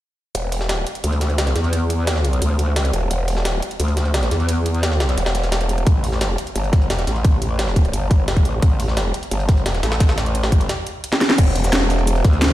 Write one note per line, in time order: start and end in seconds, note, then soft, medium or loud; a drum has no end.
0.35 0.85 E1 medium
0.35 closed hi-hat medium
0.52 closed hi-hat medium
0.52 open hi-hat medium
0.61 snare soft
0.69 snare loud
0.69 closed hi-hat medium
0.87 closed hi-hat medium
0.95 closed hi-hat soft
1.04 1.54 D2 medium
1.04 closed hi-hat medium
1.12 closed hi-hat soft
1.21 snare soft
1.21 closed hi-hat medium
1.30 closed hi-hat soft
1.38 snare loud
1.38 closed hi-hat medium
1.47 snare soft
1.47 closed hi-hat soft
1.56 2.40 E2 medium
1.56 snare soft
1.56 closed hi-hat medium
1.64 closed hi-hat soft
1.73 closed hi-hat medium
1.90 closed hi-hat medium
2.07 snare loud
2.07 closed hi-hat medium
2.16 snare soft
2.25 closed hi-hat medium
2.33 closed hi-hat soft
2.42 2.92 D2 medium
2.42 closed hi-hat medium
2.42 closed hi-hat loud
2.59 closed hi-hat medium
2.76 snare loud
2.76 closed hi-hat medium
2.76 closed hi-hat loud
2.85 closed hi-hat soft
2.93 3.09 E1 loud
2.93 closed hi-hat medium
3.11 3.61 E1 medium
3.11 closed hi-hat medium
3.28 closed hi-hat medium
3.28 open hi-hat medium
3.37 snare soft
3.45 snare loud
3.45 closed hi-hat medium
3.62 closed hi-hat medium
3.71 closed hi-hat soft
3.80 4.30 D2 loud
3.80 closed hi-hat medium
3.88 closed hi-hat soft
3.97 snare soft
3.97 closed hi-hat medium
4.06 closed hi-hat soft
4.14 snare loud
4.14 closed hi-hat medium
4.23 snare soft
4.23 closed hi-hat soft
4.31 5.16 E2 medium
4.31 snare soft
4.31 closed hi-hat medium
4.40 closed hi-hat soft
4.49 closed hi-hat medium
4.66 closed hi-hat medium
4.74 closed hi-hat soft
4.83 snare loud
4.83 closed hi-hat medium
4.92 snare soft
5.00 snare loud
5.00 closed hi-hat medium
5.09 snare soft
5.09 closed hi-hat soft
5.18 5.85 E1 loud
5.18 snare soft
5.18 closed hi-hat medium
5.26 snare loud
5.26 closed hi-hat medium
5.35 snare soft
5.35 closed hi-hat medium
5.43 snare soft
5.43 closed hi-hat medium
5.52 snare loud
5.52 closed hi-hat medium
5.61 closed hi-hat soft
5.69 closed hi-hat medium
5.78 closed hi-hat soft
5.87 6.37 A1 medium
5.87 kick loud
5.87 closed hi-hat medium
6.04 closed hi-hat medium
6.04 open hi-hat medium
6.12 snare soft
6.21 snare loud
6.21 closed hi-hat medium
6.38 closed hi-hat medium
6.47 closed hi-hat soft
6.55 7.06 G1 medium
6.55 closed hi-hat medium
6.64 closed hi-hat soft
6.73 kick loud
6.73 snare soft
6.73 closed hi-hat medium
6.81 closed hi-hat soft
6.90 snare loud
6.90 closed hi-hat medium
6.99 snare soft
6.99 closed hi-hat soft
7.07 7.92 A1 medium
7.07 snare soft
7.07 closed hi-hat medium
7.16 closed hi-hat soft
7.25 kick loud
7.25 closed hi-hat medium
7.42 closed hi-hat medium
7.59 snare loud
7.59 closed hi-hat medium
7.68 snare soft
7.76 kick medium
7.76 closed hi-hat medium
7.85 closed hi-hat soft
7.93 8.44 G1 medium
7.93 closed hi-hat medium
8.11 kick loud
8.11 closed hi-hat medium
8.28 snare loud
8.28 closed hi-hat medium
8.37 kick medium
8.37 closed hi-hat soft
8.45 8.61 A1 medium
8.45 closed hi-hat medium
8.62 9.13 A1 medium
8.62 kick loud
8.62 closed hi-hat medium
8.80 closed hi-hat medium
8.80 open hi-hat medium
8.88 snare soft
8.97 snare loud
8.97 closed hi-hat medium
9.14 closed hi-hat medium
9.23 closed hi-hat soft
9.31 9.82 G1 medium
9.31 closed hi-hat medium
9.40 closed hi-hat soft
9.49 kick loud
9.49 snare soft
9.49 closed hi-hat medium
9.57 closed hi-hat soft
9.66 snare loud
9.66 closed hi-hat medium
9.74 snare soft
9.74 closed hi-hat soft
9.83 10.43 A1 medium
9.83 snare loud
9.83 closed hi-hat medium
9.92 snare loud
9.92 closed hi-hat medium
10.00 kick loud
10.00 snare loud
10.00 closed hi-hat medium
10.09 snare loud
10.09 closed hi-hat medium
10.18 snare loud
10.18 closed hi-hat medium
10.26 closed hi-hat soft
10.35 closed hi-hat medium
10.43 10.68 G#1 medium
10.43 snare loud
10.43 closed hi-hat medium
10.52 kick medium
10.52 closed hi-hat medium
10.61 closed hi-hat soft
10.61 closed hi-hat medium
10.69 snare loud
10.69 closed hi-hat medium
10.87 closed hi-hat medium
11.04 closed hi-hat medium
11.12 snare medium
11.12 snare loud
11.12 closed hi-hat soft
11.12 closed hi-hat medium
11.21 snare medium
11.21 closed hi-hat medium
11.30 snare medium
11.30 closed hi-hat soft
11.30 closed hi-hat medium
11.38 12.23 E1 medium
11.38 kick loud
11.38 closed hi-hat medium
11.38 crash loud
11.38 shaker medium
11.56 closed hi-hat medium
11.56 open hi-hat medium
11.64 snare soft
11.64 shaker medium
11.73 snare loud
11.73 closed hi-hat medium
11.73 shaker soft
11.90 closed hi-hat medium
11.90 open hi-hat medium
11.99 closed hi-hat soft
12.07 closed hi-hat loud
12.07 closed hi-hat medium
12.07 shaker medium
12.16 closed hi-hat soft
12.24 12.53 D2 loud
12.24 kick loud
12.24 snare soft
12.24 closed hi-hat medium
12.33 closed hi-hat soft
12.42 snare loud
12.42 closed hi-hat medium
12.42 closed hi-hat loud
12.42 shaker medium